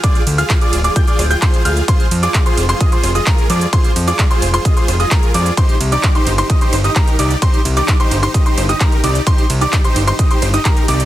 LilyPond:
<<
  \new Staff \with { instrumentName = "Grand piano" } { \time 4/4 \key c \minor \tempo 4 = 130 d'''8 r16 f'''8 d'''8 d'''16 g'''16 d'''8 g'''16 c'''8 f'''8 | c'''8 r16 d'''8 c'''8 c'''16 ees'''16 c'''8 ees'''16 bes''8 d'''8 | c'''8 r16 d'''8 c'''8 c'''16 ees'''16 c'''8 ees'''16 bes''8 d'''8 | c'''8 r16 d'''8 c'''8 c'''16 ees'''16 c'''8 ees'''16 bes''8 d'''8 |
c'''8 r16 d'''8 c'''8 c'''16 ees'''16 c'''8 ees'''16 bes''8 d'''8 | c'''8 r16 d'''8 c'''8 c'''16 ees'''16 c'''8 ees'''16 bes''8 d'''8 | }
  \new Staff \with { instrumentName = "Supersaw synth" } { \time 4/4 \key c \minor <f' aes' d''>8 r16 <f' aes' f''>8 <f' aes' d''>8 <f' aes' d''>16 <f' aes' g''>16 <f' aes' d''>8 <f' aes' g''>16 <f' c''>8 <f' aes' f''>8 | <f' aes' c''>8 r16 <f' aes' d''>8 <f' aes' c''>8 <f' aes' c''>16 <f' aes' ees''>16 <f' aes' c''>8 <f' aes' ees''>16 f'8 <f' aes' d''>8 | <f' aes' c''>8 r16 <f' aes' d''>8 <f' aes' c''>8 <f' aes' c''>16 <f' aes' ees''>16 <f' aes' c''>8 <f' aes' ees''>16 <aes' bes'>8 <f' aes' d''>8 | <ees' g' c''>8 r16 <ees' g' d''>8 <ees' g' c''>8 <ees' g' c''>16 <ees' g' ees''>16 <ees' g' c''>8 <ees' g' ees''>16 <ees' g' bes'>8 <ees' g' d''>8 |
<ees' g' c''>8 r16 <ees' g' d''>8 <ees' g' c''>8 <ees' g' c''>16 <ees' g' ees''>16 <ees' g' c''>8 <ees' g' ees''>16 <ees' g' bes'>8 <ees' g' d''>8 | <ees' g' c''>8 r16 <ees' g' d''>8 <ees' g' c''>8 <ees' g' c''>16 <ees' g' ees''>16 <ees' g' c''>8 <ees' g' ees''>16 bes'8 <ees' g' d''>8 | }
  \new Staff \with { instrumentName = "Analog synth bass" } { \clef bass \time 4/4 \key c \minor r8 d,8 r8 d,,8 r8 d,,8 r8 d,8 | r8 f,8 r8 f,,8 r8 f,,8 r8 f,8 | r8 f,8 r8 f,,8 r8 f,,8 r8 f,8 | r8 c,8 r8 g,,8 r8 g,,8 r8 c,8 |
r8 c,8 r8 g,,8 r8 g,,8 r8 c,8 | r8 c,8 r8 g,,8 r8 g,,8 r8 c,8 | }
  \new DrumStaff \with { instrumentName = "Drums" } \drummode { \time 4/4 <hh bd cymr>16 hh16 <hho cymr>16 hh16 <hc hh bd cymr>16 hh16 <hho cymr>16 hh16 <hh bd cymr>16 hh16 <hho cymr ss>16 hh16 <hc hh bd cymr>16 hh16 <hho cymr>16 hh16 | <hh bd cymr>16 hh16 <hho cymr>16 hh16 <hc hh bd cymr>16 hh16 <hho cymr>16 hh16 <hh bd cymr>16 hh16 <hho cymr ss>16 hh16 <hc hh bd cymr>16 hh16 <hho cymr>16 hh16 | <hh bd cymr>16 hh16 <hho cymr>16 hh16 <hc hh bd cymr>16 hh16 <hho cymr>16 hh16 <hh bd cymr>16 hh16 <hho cymr ss>16 hh16 <hc hh bd cymr>16 hh16 <hho cymr>16 hh16 | <hh bd cymr>16 hh16 <hho cymr>16 hh16 <hc hh bd cymr>16 hh16 <hho cymr>16 hh16 <hh bd cymr>16 hh16 <hho cymr ss>16 hh16 <hc hh bd cymr>16 hh16 <hho cymr>16 hh16 |
<hh bd cymr>16 hh16 <hho cymr>16 hh16 <hc hh bd cymr>16 hh16 <hho cymr>16 hh16 <hh bd cymr>16 hh16 <hho cymr ss>16 hh16 <hc hh bd cymr>16 hh16 <hho cymr>16 hh16 | <hh bd cymr>16 hh16 <hho cymr>16 hh16 <hc hh bd cymr>16 hh16 <hho cymr>16 hh16 <hh bd cymr>16 hh16 <hho cymr ss>16 hh16 <hc hh bd cymr>16 hh16 <hho cymr>16 hh16 | }
>>